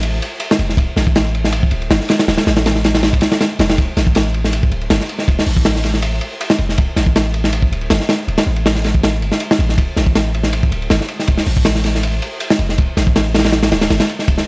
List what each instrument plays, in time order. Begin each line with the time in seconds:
Already playing: 808-style bass A1
0.03 ride
0.22 ride
0.40 ride
0.51 snare
0.59 808-style bass F1, ride
0.69 snare
0.77 808-style bass D1, kick, ride
0.96 808-style bass A1, snare, ride
1.07 kick
1.15 snare, ride
1.35 ride
1.44 snare
1.52 ride
1.63 kick
1.71 808-style bass D1, ride
1.82 ride
1.90 808-style bass G1, snare, ride
2.00 snare
2.09 snare, ride
2.19 snare, ride
2.28 808-style bass D1, snare, ride
2.37 snare, ride
2.47 808-style bass A1, snare, ride
2.56 snare, ride
2.66 snare, ride
2.75 snare
2.84 snare, ride
2.95 snare, ride
3.03 snare, ride
3.13 kick, ride
3.21 snare, ride
3.32 snare, ride
3.41 snare, ride
3.59 808-style bass F1, snare, ride
3.69 snare, ride
3.78 808-style bass D1, kick, ride
3.97 808-style bass A1, snare, ride
4.07 kick
4.15 snare, ride
4.34 ride
4.44 snare
4.53 ride
4.63 kick
4.71 808-style bass D1, ride
4.81 ride
4.90 808-style bass G1, snare, ride
5.01 snare
5.09 ride
5.19 snare
5.28 808-style bass D1, kick, ride
5.39 snare
5.46 808-style bass A1, open hi-hat
5.57 kick
5.65 snare, ride
5.75 snare
5.84 snare, ride
5.94 snare
6.02 ride
6.21 ride
6.41 ride
6.50 snare
6.58 808-style bass F1, ride
6.69 snare
6.78 808-style bass D1, kick, ride
6.96 808-style bass A1, snare, ride
7.06 kick
7.16 snare, ride
7.34 ride
7.44 snare
7.53 ride
7.62 kick
7.71 808-style bass D1, ride
7.81 ride
7.90 808-style bass G1, snare, ride
8.00 snare
8.09 snare, ride
8.28 808-style bass D1, ride
8.38 snare, ride
8.46 808-style bass A1
8.56 ride
8.66 snare, ride
8.75 snare
8.84 snare, ride
8.94 kick
9.03 snare, ride
9.21 808-style bass G1, ride
9.32 snare
9.40 ride
9.51 snare
9.59 808-style bass A1, ride
9.69 snare
9.78 808-style bass D1, kick, ride
9.96 808-style bass A1, snare, ride
10.06 kick
10.15 snare, ride
10.34 ride
10.43 snare
10.53 ride
10.63 kick
10.71 808-style bass D1, ride
10.82 ride
10.90 808-style bass G1, snare, ride
11.01 snare
11.08 ride
11.19 snare
11.27 808-style bass D1, kick, ride
11.37 snare
11.46 808-style bass A1, open hi-hat
11.57 kick
11.65 snare, ride
11.75 snare
11.84 snare, ride
11.95 snare
12.03 ride
12.22 ride
12.40 ride
12.50 snare
12.59 808-style bass F1, ride
12.69 snare
12.78 808-style bass D1, kick, ride
12.97 808-style bass A1, snare, ride
13.07 kick
13.16 snare, ride
13.34 snare, ride
13.39 snare, ride
13.44 snare, ride
13.52 snare, ride
13.63 snare, ride
13.72 808-style bass D1, snare, ride
13.81 snare, ride
13.90 808-style bass G1, snare, ride
14.00 snare, ride
14.09 ride
14.19 snare
14.28 808-style bass D1, kick, ride
14.38 snare